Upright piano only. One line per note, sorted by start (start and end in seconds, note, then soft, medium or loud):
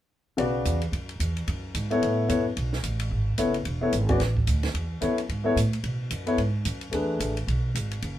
0.37 0.78 C#3 soft
0.37 0.78 F#4 soft
0.37 0.78 B4 soft
0.37 0.79 D5 medium
1.90 2.27 B3 soft
1.90 2.27 E4 soft
1.90 2.27 A4 soft
1.90 2.28 C#5 medium
2.28 2.43 B3 soft
2.28 2.44 E4 soft
2.28 2.44 A4 soft
2.28 2.44 C#5 medium
3.38 3.53 B3 soft
3.38 3.53 E4 soft
3.38 3.53 A4 soft
3.38 3.53 C#5 soft
3.81 3.92 B3 soft
3.81 3.92 E4 soft
3.81 3.92 A4 soft
3.81 3.92 C#5 medium
4.09 4.19 C#4 medium
4.09 4.19 F#4 soft
4.09 4.20 B4 soft
4.09 4.20 D5 medium
5.01 5.16 B3 soft
5.01 5.16 E4 soft
5.01 5.17 A4 soft
5.01 5.17 C#5 soft
5.44 5.55 B3 medium
5.44 5.55 E4 soft
5.44 5.56 A4 soft
5.44 5.56 C#5 medium
6.26 6.37 B3 soft
6.26 6.38 E4 soft
6.26 6.38 A4 soft
6.26 6.38 C#5 medium
6.91 7.33 A3 soft
6.91 7.33 D4 soft
6.91 7.34 G#4 soft
6.91 7.34 B4 soft